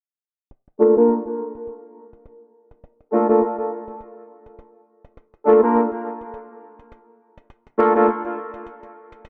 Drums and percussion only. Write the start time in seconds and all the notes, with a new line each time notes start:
0.51 closed hi-hat
0.68 closed hi-hat
0.97 closed hi-hat
1.09 closed hi-hat
1.26 closed hi-hat
1.55 closed hi-hat
1.67 closed hi-hat
2.13 closed hi-hat
2.26 closed hi-hat
2.71 closed hi-hat
2.84 closed hi-hat
3.01 closed hi-hat
3.29 closed hi-hat
3.42 closed hi-hat
3.59 closed hi-hat
3.88 closed hi-hat
4.01 closed hi-hat
4.46 closed hi-hat
4.59 closed hi-hat
5.05 closed hi-hat
5.17 closed hi-hat
5.34 closed hi-hat
5.63 closed hi-hat
5.75 closed hi-hat
5.92 closed hi-hat
6.21 closed hi-hat
6.34 closed hi-hat
6.79 closed hi-hat
6.92 closed hi-hat
7.38 closed hi-hat
7.50 closed hi-hat
7.67 closed hi-hat
7.96 closed hi-hat
8.08 closed hi-hat
8.25 closed hi-hat
8.54 closed hi-hat
8.67 closed hi-hat
8.83 closed hi-hat
9.12 closed hi-hat
9.25 closed hi-hat